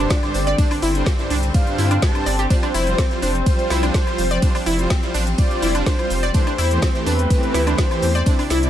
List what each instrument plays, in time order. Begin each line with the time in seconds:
Already playing: string section D3 G3 C4
0.00 supersaw synth G2 G3 D4 C5
0.10 synth arpeggio sound D4, analog synth lead D5, kick, snare, closed hi-hat, ride, tambourine, cabasa
0.23 supersaw synth G2 G3 D4 C5, snare, closed hi-hat, cabasa, high woodblock
0.34 analog synth bass G1, open hi-hat, tambourine, cabasa
0.47 synth arpeggio sound D5, snare, closed hi-hat, cabasa
0.58 supersaw synth G2 G3 D4 C5, synth arpeggio sound D4, kick, closed hi-hat, ride, tambourine, cabasa
0.71 synth arpeggio sound D4, open hi-hat, cabasa, high woodblock
0.82 analog synth bass G1, synth arpeggio sound E4, open hi-hat, tambourine, cabasa
0.95 supersaw synth G2 G3 D4 C5, closed hi-hat, cabasa
1.06 synth arpeggio sound C4, kick, snare, closed hi-hat, ride, tambourine, cabasa
1.19 supersaw synth G2 G3 D4 C5, snare, closed hi-hat, cabasa
1.30 analog synth bass C2, synth arpeggio sound D4, snare, open hi-hat, cabasa
1.43 closed hi-hat, cabasa
1.54 supersaw synth G2 G3 D4 C5, analog synth lead F5, kick, closed hi-hat, ride, tambourine, cabasa
1.67 closed hi-hat, cabasa
1.78 analog synth bass G2, synth arpeggio sound E4, open hi-hat, tambourine, cabasa
1.91 synth arpeggio sound D4, closed hi-hat, cabasa, high woodblock
2.02 supersaw synth G2 G3 D4 C5, synth arpeggio sound D4, analog synth lead A5, kick, snare, closed hi-hat, ride, tambourine, cabasa
2.15 supersaw synth G2 G3 D4 C5, closed hi-hat, cabasa, high woodblock
2.26 analog synth bass G1, synth arpeggio sound D5, open hi-hat, tambourine, cabasa
2.39 synth arpeggio sound G4, snare, closed hi-hat, cabasa
2.50 string section F3, supersaw synth G3 F4 C5, synth arpeggio sound D4, analog synth lead C5, kick, closed hi-hat, ride, tambourine, cabasa
2.63 synth arpeggio sound D4, closed hi-hat, cabasa, high woodblock
2.74 analog synth bass F1, synth arpeggio sound E4, open hi-hat, tambourine, cabasa
2.87 supersaw synth G3 F4 C5, closed hi-hat, cabasa
2.98 synth arpeggio sound C4, kick, snare, closed hi-hat, ride, tambourine, cabasa
3.11 supersaw synth G3 F4 C5, snare, closed hi-hat, cabasa
3.22 analog synth bass F1, synth arpeggio sound D4, analog synth lead C5, open hi-hat, tambourine, cabasa
3.35 closed hi-hat, cabasa
3.46 supersaw synth G3 F4 C5, kick, closed hi-hat, ride, tambourine, cabasa
3.59 closed hi-hat, cabasa
3.70 analog synth bass C2, synth arpeggio sound E4, snare, open hi-hat, tambourine, cabasa
3.83 supersaw synth G3 F4 C5, synth arpeggio sound D4, closed hi-hat, cabasa, high woodblock
3.94 synth arpeggio sound D4, analog synth lead C5, kick, snare, closed hi-hat, ride, tambourine, cabasa
4.07 supersaw synth G3 F4 C5, snare, closed hi-hat, cabasa, high woodblock
4.18 analog synth bass F1, open hi-hat, tambourine, cabasa
4.31 synth arpeggio sound D5, snare, closed hi-hat, cabasa
4.42 supersaw synth G3 F4 C5, synth arpeggio sound D4, kick, closed hi-hat, ride, tambourine, cabasa
4.55 synth arpeggio sound D4, open hi-hat, cabasa, high woodblock
4.66 analog synth bass F1, synth arpeggio sound E4, open hi-hat, tambourine, cabasa
4.79 supersaw synth G3 F4 C5, closed hi-hat, cabasa
4.90 synth arpeggio sound C4, kick, snare, closed hi-hat, ride, tambourine, cabasa
5.03 supersaw synth G3 F4 C5, snare, closed hi-hat, cabasa
5.14 analog synth bass A1, synth arpeggio sound D4, snare, open hi-hat, cabasa
5.27 closed hi-hat, cabasa
5.38 supersaw synth G3 F4 C5, analog synth lead D5, kick, closed hi-hat, ride, tambourine, cabasa
5.51 closed hi-hat, cabasa
5.62 analog synth bass F1, synth arpeggio sound E4, open hi-hat, tambourine, cabasa
5.75 supersaw synth G3 F4 C5, synth arpeggio sound D4, closed hi-hat, cabasa, high woodblock
5.86 synth arpeggio sound D4, analog synth lead C5, kick, snare, closed hi-hat, ride, tambourine, cabasa
5.99 supersaw synth G3 F4 C5, closed hi-hat, cabasa, high woodblock
6.10 analog synth bass F1, open hi-hat, tambourine, cabasa
6.23 synth arpeggio sound D5, snare, closed hi-hat, cabasa
6.34 supersaw synth E3 A3 G4 C5, string section A3 C4, synth arpeggio sound D4, analog synth lead C5, kick, closed hi-hat, ride, tambourine, cabasa
6.47 synth arpeggio sound D4, closed hi-hat, cabasa, high woodblock
6.58 analog synth bass E2, synth arpeggio sound E4, open hi-hat, tambourine, cabasa
6.71 supersaw synth E3 A3 G4 C5, closed hi-hat, cabasa
6.82 synth arpeggio sound C4, kick, snare, closed hi-hat, ride, tambourine, cabasa
6.95 supersaw synth E3 A3 G4 C5, snare, closed hi-hat, cabasa
7.06 analog synth bass E2, synth arpeggio sound D4, analog synth lead B4, open hi-hat, tambourine, cabasa
7.19 closed hi-hat, cabasa
7.30 supersaw synth E3 A3 C4 G4, kick, closed hi-hat, ride, tambourine, cabasa
7.43 closed hi-hat, cabasa
7.54 analog synth bass D2, synth arpeggio sound E4, snare, open hi-hat, cabasa
7.67 supersaw synth E3 A3 G4 C5, synth arpeggio sound D4, closed hi-hat, cabasa, high woodblock
7.78 synth arpeggio sound D4, analog synth lead C5, kick, snare, closed hi-hat, ride, tambourine, cabasa
7.91 supersaw synth E3 A3 G4 C5, snare, closed hi-hat, cabasa, high woodblock
8.02 analog synth bass E2, open hi-hat, tambourine, cabasa
8.15 synth arpeggio sound D5, snare, closed hi-hat, cabasa
8.26 supersaw synth C3 C4 E4 D5, string section C3 D4 E4, synth arpeggio sound D4, kick, closed hi-hat, ride, tambourine, cabasa
8.39 synth arpeggio sound D4, open hi-hat, cabasa, high woodblock
8.50 analog synth bass C2, synth arpeggio sound E4, snare, open hi-hat, tambourine, cabasa
8.63 supersaw synth C3 C4 E4 D5, closed hi-hat, cabasa